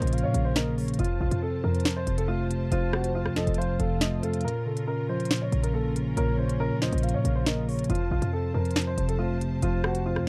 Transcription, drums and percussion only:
0.02 closed hi-hat
0.07 closed hi-hat
0.13 closed hi-hat
0.18 closed hi-hat
0.34 closed hi-hat
0.56 snare, closed hi-hat
0.78 open hi-hat
0.88 closed hi-hat
0.94 closed hi-hat
0.99 closed hi-hat
1.04 closed hi-hat
1.31 closed hi-hat
1.75 closed hi-hat
1.80 closed hi-hat
1.85 snare, closed hi-hat
1.91 closed hi-hat
2.07 closed hi-hat
2.18 closed hi-hat
2.51 closed hi-hat
2.72 closed hi-hat
2.93 cross-stick
3.04 closed hi-hat
3.26 cross-stick
3.36 snare
3.47 closed hi-hat
3.54 closed hi-hat
3.62 closed hi-hat
3.80 closed hi-hat
4.01 snare, closed hi-hat
4.23 closed hi-hat
4.34 closed hi-hat
4.41 closed hi-hat
4.48 closed hi-hat
4.77 closed hi-hat
5.20 closed hi-hat
5.25 closed hi-hat
5.31 snare, closed hi-hat
5.36 closed hi-hat
5.52 closed hi-hat
5.64 closed hi-hat
5.96 closed hi-hat
6.17 closed hi-hat
6.49 closed hi-hat
6.82 snare
6.93 closed hi-hat
6.98 closed hi-hat
7.03 closed hi-hat
7.09 closed hi-hat
7.25 closed hi-hat
7.46 snare, closed hi-hat
7.69 open hi-hat
7.79 closed hi-hat
7.84 closed hi-hat
7.90 closed hi-hat
7.95 closed hi-hat
8.22 closed hi-hat
8.65 closed hi-hat
8.71 closed hi-hat
8.76 snare, closed hi-hat
8.81 closed hi-hat
8.98 closed hi-hat
9.09 closed hi-hat
9.41 closed hi-hat
9.62 closed hi-hat
9.84 cross-stick
9.95 closed hi-hat
10.16 cross-stick

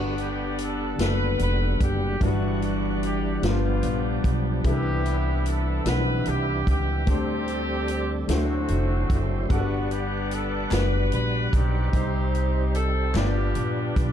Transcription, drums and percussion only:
0.18 closed hi-hat
0.59 closed hi-hat
0.99 snare, closed hi-hat
1.39 closed hi-hat
1.81 kick, closed hi-hat
2.21 kick, closed hi-hat
2.62 closed hi-hat
3.03 closed hi-hat
3.43 snare, closed hi-hat
3.83 closed hi-hat
4.24 kick, closed hi-hat
4.64 kick, closed hi-hat
5.06 closed hi-hat
5.46 closed hi-hat
5.86 snare, closed hi-hat
6.25 closed hi-hat
6.67 kick, closed hi-hat
7.07 kick, closed hi-hat
7.48 closed hi-hat
7.88 closed hi-hat
8.29 snare, closed hi-hat
8.68 closed hi-hat
9.10 kick, closed hi-hat
9.50 kick, closed hi-hat
9.91 closed hi-hat
10.31 closed hi-hat
10.71 snare, clap, closed hi-hat
11.12 closed hi-hat
11.53 kick, closed hi-hat
11.93 kick, closed hi-hat
12.35 closed hi-hat
12.75 closed hi-hat
13.15 snare, clap, closed hi-hat
13.55 closed hi-hat
13.96 kick, closed hi-hat

